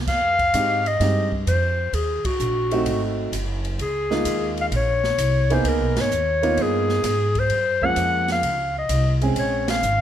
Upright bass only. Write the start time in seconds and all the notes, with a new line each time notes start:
0.07 F2
0.54 G#2
1.00 G2
1.47 F2
1.93 D#2
2.25 muted upright bass stroke
2.40 A#1
2.86 G#1
3.32 F#1
3.79 C#2
4.25 D#2
4.71 A#1
5.18 C2
5.64 C#2
5.80 B1
5.95 G#1
6.11 D#2
6.57 G2
7.03 G#2
7.50 F#2
7.96 F2
8.42 C#2
8.89 C2
9.83 G#1